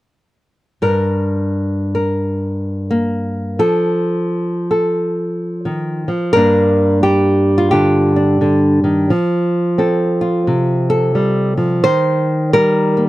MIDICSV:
0, 0, Header, 1, 2, 480
1, 0, Start_track
1, 0, Key_signature, -2, "minor"
1, 0, Tempo, 688863
1, 571, Time_signature, 4, 2, 24, 8
1, 9120, End_track
2, 0, Start_track
2, 0, Title_t, "Nylon-string guitar"
2, 0, Program_c, 0, 24
2, 570, Note_on_c, 0, 43, 72
2, 574, Note_on_c, 0, 70, 59
2, 1350, Note_off_c, 0, 70, 0
2, 1357, Note_on_c, 0, 70, 47
2, 2025, Note_on_c, 0, 58, 50
2, 2480, Note_off_c, 0, 70, 0
2, 2497, Note_off_c, 0, 43, 0
2, 2502, Note_off_c, 0, 58, 0
2, 2503, Note_on_c, 0, 53, 69
2, 2505, Note_on_c, 0, 69, 65
2, 3272, Note_off_c, 0, 69, 0
2, 3280, Note_on_c, 0, 69, 47
2, 3938, Note_on_c, 0, 51, 56
2, 4228, Note_off_c, 0, 53, 0
2, 4233, Note_off_c, 0, 51, 0
2, 4236, Note_on_c, 0, 53, 52
2, 4401, Note_off_c, 0, 69, 0
2, 4410, Note_on_c, 0, 70, 99
2, 4421, Note_off_c, 0, 53, 0
2, 4423, Note_on_c, 0, 43, 73
2, 4427, Note_on_c, 0, 55, 51
2, 4433, Note_on_c, 0, 58, 52
2, 4437, Note_on_c, 0, 62, 52
2, 4893, Note_off_c, 0, 55, 0
2, 4894, Note_off_c, 0, 70, 0
2, 4898, Note_on_c, 0, 67, 81
2, 4901, Note_on_c, 0, 55, 56
2, 5277, Note_off_c, 0, 62, 0
2, 5280, Note_on_c, 0, 65, 66
2, 5363, Note_off_c, 0, 67, 0
2, 5371, Note_on_c, 0, 67, 75
2, 5384, Note_on_c, 0, 50, 57
2, 5669, Note_off_c, 0, 65, 0
2, 5688, Note_on_c, 0, 62, 43
2, 5852, Note_off_c, 0, 50, 0
2, 5861, Note_on_c, 0, 50, 55
2, 6153, Note_off_c, 0, 50, 0
2, 6158, Note_on_c, 0, 51, 53
2, 6316, Note_off_c, 0, 55, 0
2, 6334, Note_off_c, 0, 67, 0
2, 6339, Note_off_c, 0, 43, 0
2, 6341, Note_off_c, 0, 51, 0
2, 6343, Note_on_c, 0, 53, 76
2, 6344, Note_off_c, 0, 58, 0
2, 6345, Note_off_c, 0, 62, 0
2, 6816, Note_on_c, 0, 60, 61
2, 6820, Note_on_c, 0, 69, 52
2, 7115, Note_on_c, 0, 65, 49
2, 7298, Note_on_c, 0, 48, 57
2, 7585, Note_off_c, 0, 69, 0
2, 7593, Note_on_c, 0, 69, 63
2, 7766, Note_off_c, 0, 53, 0
2, 7769, Note_on_c, 0, 55, 54
2, 8062, Note_off_c, 0, 55, 0
2, 8065, Note_on_c, 0, 53, 56
2, 8231, Note_off_c, 0, 60, 0
2, 8234, Note_off_c, 0, 65, 0
2, 8234, Note_off_c, 0, 69, 0
2, 8248, Note_on_c, 0, 72, 107
2, 8249, Note_off_c, 0, 48, 0
2, 8252, Note_off_c, 0, 53, 0
2, 8252, Note_on_c, 0, 51, 77
2, 8730, Note_off_c, 0, 72, 0
2, 8733, Note_on_c, 0, 70, 93
2, 8739, Note_on_c, 0, 55, 59
2, 9037, Note_on_c, 0, 58, 44
2, 9112, Note_off_c, 0, 70, 0
2, 9120, Note_off_c, 0, 51, 0
2, 9120, Note_off_c, 0, 55, 0
2, 9120, Note_off_c, 0, 58, 0
2, 9120, End_track
0, 0, End_of_file